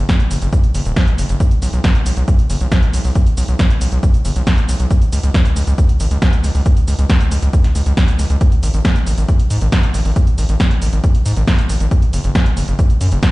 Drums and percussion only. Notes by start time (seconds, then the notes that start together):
0.09 kick, snare, closed hi-hat, shaker
0.20 closed hi-hat, shaker
0.31 open hi-hat, shaker
0.42 closed hi-hat, shaker
0.53 kick, closed hi-hat, shaker
0.64 closed hi-hat, shaker
0.75 open hi-hat, shaker
0.86 closed hi-hat, shaker
0.96 kick, snare, open hi-hat, shaker
1.07 closed hi-hat, shaker
1.18 open hi-hat, shaker
1.29 closed hi-hat, shaker
1.40 kick, closed hi-hat, shaker
1.51 closed hi-hat, shaker
1.62 open hi-hat, shaker
1.73 closed hi-hat, shaker
1.84 kick, snare, closed hi-hat, shaker
1.95 closed hi-hat, shaker
2.06 open hi-hat, shaker
2.17 closed hi-hat, shaker
2.28 kick, closed hi-hat, shaker
2.39 closed hi-hat, shaker
2.50 open hi-hat, shaker
2.61 closed hi-hat, shaker
2.72 kick, snare, closed hi-hat, shaker
2.83 closed hi-hat, shaker
2.94 open hi-hat, shaker
3.04 open hi-hat, shaker
3.15 kick, closed hi-hat, shaker
3.26 closed hi-hat, shaker
3.37 open hi-hat, shaker
3.48 closed hi-hat, shaker
3.59 kick, snare, closed hi-hat, shaker
3.70 closed hi-hat, shaker
3.81 open hi-hat, shaker
3.92 closed hi-hat, shaker
4.03 kick, closed hi-hat, shaker
4.14 closed hi-hat, shaker
4.25 open hi-hat, shaker
4.36 closed hi-hat, shaker
4.47 kick, snare, open hi-hat, shaker
4.58 closed hi-hat, shaker
4.69 open hi-hat, shaker
4.80 closed hi-hat, shaker
4.91 kick, closed hi-hat, shaker
5.02 closed hi-hat, shaker
5.12 open hi-hat, shaker
5.23 closed hi-hat, shaker
5.34 kick, snare, closed hi-hat, shaker
5.45 closed hi-hat, shaker
5.56 open hi-hat, shaker
5.67 closed hi-hat, shaker
5.78 kick, closed hi-hat, shaker
5.89 closed hi-hat, shaker
6.00 open hi-hat, shaker
6.11 closed hi-hat, shaker
6.22 kick, snare, closed hi-hat, shaker
6.33 closed hi-hat, shaker
6.44 open hi-hat, shaker
6.55 open hi-hat, shaker
6.66 kick, closed hi-hat, shaker
6.77 closed hi-hat, shaker
6.88 open hi-hat, shaker
6.99 closed hi-hat, shaker
7.10 kick, snare, closed hi-hat, shaker
7.21 closed hi-hat, shaker
7.31 open hi-hat, shaker
7.42 closed hi-hat, shaker
7.53 kick, closed hi-hat, shaker
7.64 snare, closed hi-hat, shaker
7.75 open hi-hat, shaker
7.86 closed hi-hat, shaker
7.97 kick, snare, open hi-hat, shaker
8.08 closed hi-hat, shaker
8.19 open hi-hat, shaker
8.30 closed hi-hat, shaker
8.41 kick, closed hi-hat, shaker
8.52 closed hi-hat, shaker
8.63 open hi-hat, shaker
8.74 closed hi-hat, shaker
8.85 kick, snare, closed hi-hat, shaker
8.96 closed hi-hat, shaker
9.07 open hi-hat, shaker
9.18 closed hi-hat, shaker
9.29 kick, closed hi-hat, shaker
9.39 closed hi-hat, shaker
9.50 open hi-hat, shaker
9.61 closed hi-hat, shaker
9.72 kick, snare, closed hi-hat, shaker
9.83 closed hi-hat, shaker
9.94 open hi-hat, shaker
10.05 open hi-hat, shaker
10.16 kick, closed hi-hat, shaker
10.27 closed hi-hat, shaker
10.38 open hi-hat, shaker
10.49 closed hi-hat, shaker
10.60 kick, snare, closed hi-hat, shaker
10.71 closed hi-hat, shaker
10.82 open hi-hat, shaker
10.93 closed hi-hat, shaker
11.04 kick, closed hi-hat, shaker
11.15 closed hi-hat, shaker
11.26 open hi-hat, shaker
11.37 closed hi-hat, shaker
11.47 kick, snare, open hi-hat, shaker
11.58 closed hi-hat, shaker
11.69 open hi-hat, shaker
11.80 closed hi-hat, shaker
11.91 kick, closed hi-hat, shaker
12.02 closed hi-hat, shaker
12.13 open hi-hat, shaker
12.24 closed hi-hat, shaker
12.35 kick, snare, closed hi-hat, shaker
12.46 closed hi-hat, shaker
12.57 open hi-hat, shaker
12.68 closed hi-hat, shaker
12.79 kick, closed hi-hat, shaker
12.90 closed hi-hat, shaker
13.01 open hi-hat, shaker
13.12 closed hi-hat, shaker
13.23 kick, snare, closed hi-hat, shaker